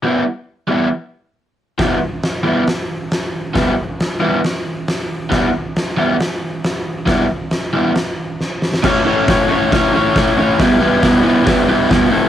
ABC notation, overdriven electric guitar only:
X:1
M:4/4
L:1/8
Q:1/4=137
K:Em
V:1 name="Overdriven electric guitar"
[E,G,B,E] z2 [E,G,B,E] z4 | [E,G,B,E] z2 [E,G,B,E] z4 | [E,G,B,E] z2 [E,G,B,E] z4 | [E,G,B,E] z2 [E,G,B,E] z4 |
[E,G,B,E] z2 [E,G,B,E] z4 | [A,^CEA^c] [A,CEAc] [A,CEAc] [A,CEAc] [A,CEAc] [A,CEAc] [A,CEAc] [A,CEAc] | [G,B,EB] [G,B,EB] [G,B,EB] [G,B,EB] [G,B,EB] [G,B,EB] [G,B,EB] [A,CEA] |]